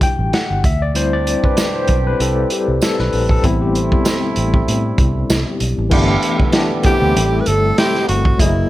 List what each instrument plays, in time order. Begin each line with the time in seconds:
Already playing: tine electric piano G3 D4 E4 G4
0.01 tine electric piano G5, kick, closed hi-hat
0.19 fingered electric bass A1
0.33 tine electric piano F#5, snare, closed hi-hat
0.51 fingered electric bass G1
0.64 fingered electric bass D2, tine electric piano E5, kick, closed hi-hat
0.82 tine electric piano D5
0.94 french horn section D3 A3 D4 G4, tine electric piano G3 C4 E4 C5, horn section C4 D4 G4, closed hi-hat
1.13 tine electric piano D5
1.27 closed hi-hat
1.44 tine electric piano B4, kick
1.57 snare, closed hi-hat, tambourine
1.76 tine electric piano C5
1.88 fingered electric bass B1, kick, closed hi-hat
2.07 tine electric piano B4
2.20 fingered electric bass C2, tine electric piano G3 C4 E4 A4, closed hi-hat
2.50 tine electric piano G4, closed hi-hat
2.68 fingered electric bass C2
2.81 tine electric piano A4, snare, closed hi-hat, tambourine
2.99 fingered electric bass B1, tine electric piano B4, snare
3.13 fingered electric bass A#1, open hi-hat
3.29 tine electric piano A4, kick
3.43 fingered electric bass A1, tine electric piano G3 B3 C4 E4, horn section A3 C4 E4, kick, closed hi-hat
3.61 tine electric piano G4
3.75 closed hi-hat
3.92 kick
4.05 snare, closed hi-hat, tambourine
4.36 fingered electric bass A1, closed hi-hat
4.54 kick
4.68 fingered electric bass A2, closed hi-hat
4.98 fingered electric bass C2, kick, closed hi-hat
5.30 fingered electric bass C2, snare, closed hi-hat, tambourine
5.60 fingered electric bass B1, closed hi-hat
5.78 fingered electric bass A1
5.90 fingered electric bass G1, tine electric piano E3 A3 B3 D4 G4, french horn section G3 E4 A4 B4, horn section D4 E4 G4, kick, crash
6.23 closed hi-hat
6.39 horn section A3 B3 E4, kick
6.52 tine electric piano E3 A3 B3 D4 G4, horn section D4 E4 G4, snare, closed hi-hat
6.83 tine electric piano E3 A3 B3 D4 G4, horn section C4 E4 G4, tenor saxophone G4, muted fingered electric bass stroke, kick, closed hi-hat
7.02 fingered electric bass D2
7.14 fingered electric bass A1, tine electric piano G3 A3 C4 E4 A4, french horn section A3 C4, closed hi-hat
7.40 tenor saxophone B4
7.46 fingered electric bass G1, tenor saxophone A4, closed hi-hat
7.77 horn section A3 C4 E4, tenor saxophone G4, snare, closed hi-hat
7.95 snare
8.09 fingered electric bass G1, tenor saxophone F#4, closed hi-hat
8.25 kick
8.37 fingered electric bass F#1, french horn section E3 F#3 A#3, tine electric piano F#3 A3 E4 G#4 D#5, tenor saxophone E4, kick, closed hi-hat
8.45 tine electric piano A#3